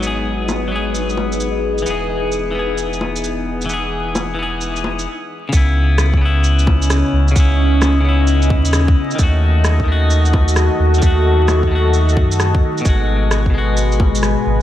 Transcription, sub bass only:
X:1
M:4/4
L:1/8
Q:"Swing 16ths" 1/4=131
K:C#m
V:1 name="Sub bass" clef=bass
G,,,8 | E,,,8- | E,,,6 z2 | C,,6 z C,, |
C,,4- C,, D,,2 z | D,,6 z D,, | D,,4- D,, F,,2 z | G,,,6 z G,,, |]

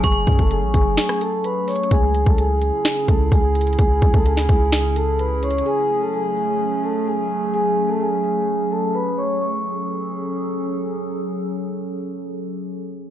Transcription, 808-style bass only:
X:1
M:4/4
L:1/16
Q:1/4=128
K:F#m
V:1 name="808-style bass" clef=bass
F,,,2 F,, F,,,2 A,,, F,,,2 z8 | C,,3 C,,4 z3 C,,2 C,,4 | C,,2 C,, C,,2 D,, C,,8- C,,2 | z16 |
z16 | z16 | z16 |]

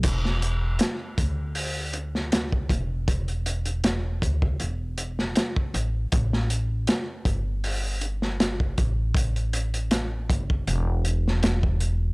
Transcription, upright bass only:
X:1
M:4/4
L:1/8
Q:"Swing 16ths" 1/4=79
K:Em
V:1 name="Upright bass" clef=bass
E,,,2 z D,,4 E,,,- | E,,,3 D,, E,,,2 z A,,, | A,,,2 z G,,,4 A,,,- | A,,,3 G,,, E,,,4 |]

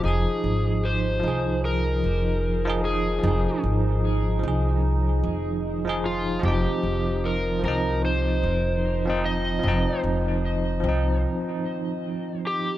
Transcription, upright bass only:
X:1
M:4/4
L:1/8
Q:"Swing 16ths" 1/4=75
K:Fm
V:1 name="Upright bass" clef=bass
F,,, A,,,2 C,,2 F,,,3 | F,,, A,,,2 C,,2 F,,,3 | F,,, F,,,2 C,,2 F,,,3 | F,,, F,,,2 C,, z4 |]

